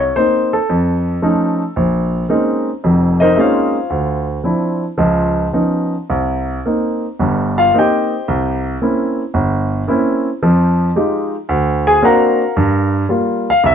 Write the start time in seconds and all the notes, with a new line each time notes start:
0.00 C#5
0.16 A#3 C4 D#4 C5
0.53 A4
0.69 F2
1.22 F3 A3 C#4 D#4
1.76 A#1
2.29 G#3 A#3 C4 C#4 D#4
2.84 F1 F2
3.20 D#4 A#4 C5 D#5
3.36 G#3 A#3 C4 C#4 D#4 F4 E5
3.40 C5 C#5 F5
3.90 D2
4.44 F3 C4 D4 E4
4.98 C#2 F3
5.53 F3 B3 C#4 D#4
6.10 C2
6.66 A#3 C4 D#4
7.19 G1 G2
7.58 F4 F5
7.74 A#3 C4 D#4
7.78 G4 C5 D#5 G5
8.28 C2
8.82 A#3 C4 C#4 E4
9.34 G1
9.88 A#3 C4 C#4 E4
10.43 F2 F3
10.96 G#3 D#4 F4 G4
11.49 D2
11.87 G#4 G#5
12.02 A#3 C4 D4 F#4 A#4 F5 F#5 A#5
12.57 G2
13.09 G3 A#3 F4
13.50 F5
13.64 C2 E5